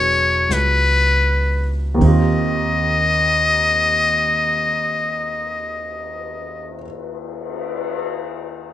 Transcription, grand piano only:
0.00 1.99 F#3 soft
0.00 2.00 B3 soft
0.00 2.01 D4 soft
0.00 2.02 E4 soft
0.00 2.02 G#4 medium
1.94 6.73 D#2 soft
1.94 6.77 D#3 soft
2.01 6.79 C4 soft
2.01 6.83 F4 soft
2.07 6.86 G4 soft

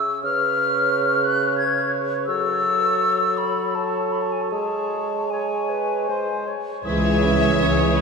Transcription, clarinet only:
0.00 0.19 G#4 medium
0.25 2.25 B4 medium
2.28 3.72 A4 medium
3.75 4.54 A4 soft
4.52 5.14 G#4 soft
5.31 5.71 C#5 soft
5.70 6.09 B4 soft
6.08 6.49 C5 soft
6.47 6.84 C#5 soft
6.85 8.01 G#4 medium

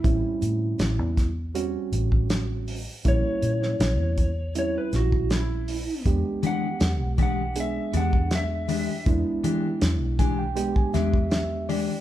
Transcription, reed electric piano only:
0.04 1.29 G3 medium
0.04 1.29 C4 medium
0.04 1.29 C#4 medium
0.04 1.29 E4 medium
1.55 2.79 G3 medium
1.55 2.80 C4 medium
1.55 2.80 C#4 medium
1.55 2.80 F#4 medium
3.05 4.30 G3 medium
3.05 4.30 A#3 medium
3.05 4.30 C#4 medium
3.05 4.30 E4 medium
4.55 5.80 G3 medium
4.55 5.80 C4 medium
4.55 5.80 C#4 medium
4.55 5.80 E4 medium
6.06 7.30 G#3 medium
6.06 7.30 B3 medium
6.06 7.30 D4 medium
6.06 7.31 G4 medium
7.56 8.80 G#3 medium
7.56 8.80 B3 medium
7.56 8.80 D4 medium
7.56 8.81 G#4 medium
9.07 10.31 G#3 medium
9.07 10.31 B3 medium
9.07 10.31 D4 medium
9.07 10.31 E4 medium
10.19 10.37 G#5 medium
10.39 10.55 G5 medium
10.56 11.80 G#3 medium
10.56 11.80 B3 medium
10.56 11.81 D4 medium
10.56 11.81 G4 medium
10.56 10.74 G5 medium
10.76 10.93 G#5 medium
10.94 11.29 E5 medium
11.31 11.66 E5 medium
11.69 12.01 D5 medium

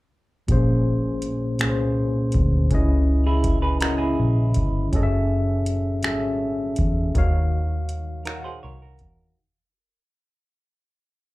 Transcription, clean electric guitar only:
3.26 3.62 E4 medium
3.26 3.61 G#4 medium
3.62 3.80 G#4 medium
3.62 3.80 B4 medium
3.81 3.98 F#4 medium
3.81 3.99 A#4 medium
3.98 4.88 E4 medium
3.98 4.88 G#4 medium
8.25 8.44 F#4 medium
8.25 8.43 A#4 medium
8.44 8.62 G#4 medium
8.44 8.62 C5 medium
8.63 8.81 A#4 medium
8.63 8.81 C#5 medium
8.82 9.35 F#4 medium
8.82 9.35 A#4 medium

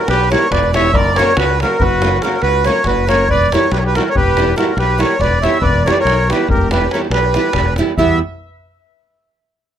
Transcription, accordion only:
0.08 0.30 B4 loud
0.31 0.50 C#5 loud
0.52 0.75 D5 medium
0.75 0.96 E5 medium
0.94 1.18 D5 loud
1.16 1.36 C#5 loud
1.38 1.59 B4 loud
1.62 1.82 A#4 medium
1.80 2.19 B4 medium
2.22 2.41 A#4 medium
2.42 2.66 B4 loud
2.66 2.86 C#5 loud
2.87 3.08 B4 loud
3.08 3.29 C#5 loud
3.30 3.53 D5 loud
3.53 3.71 C#5 medium
3.72 3.77 B4 loud
3.77 3.83 C#5 medium
3.86 3.96 B4 medium
3.96 4.09 A#4 medium
4.10 4.16 C#5 medium
4.16 4.54 B4 loud
4.57 4.77 A#4 medium
4.79 5.01 B4 loud
4.99 5.20 C#5 medium
5.20 5.44 D5 loud
5.42 5.63 E5 loud
5.62 5.86 D5 loud
5.86 5.93 C#5 medium
5.91 5.98 D5 medium
5.99 6.30 C#5 loud
6.29 6.48 B4 medium
6.49 6.70 A#4 medium
6.72 6.92 B4 medium
6.92 7.01 C#5 medium
7.13 7.74 B4 medium
7.98 8.19 E5 loud

